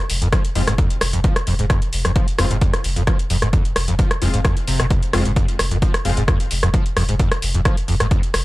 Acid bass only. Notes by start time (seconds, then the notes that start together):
0.22 F2
0.32 F3
0.55 F2
0.67 G#2
0.78 F2
1.13 F2
1.24 F3
1.47 F2
1.59 G#2
1.70 F2
2.05 F2
2.16 F3
2.39 F2
2.51 G#2
2.61 F2
2.96 F2
3.07 F3
3.30 F2
3.42 G#2
3.53 F2
3.88 F2
3.99 F3
4.22 F2
4.34 G#2
4.45 F2
4.68 C3
4.80 A#2
4.90 F1
5.13 F2
5.25 G#2
5.36 F2
5.71 F2
5.82 F3
6.05 F2
6.17 G#2
6.28 F2
6.63 F2
6.74 F3
6.97 F2
7.09 G#2
7.20 F2
7.54 F2
7.65 F3
7.88 F2
8.00 G#2
8.11 F2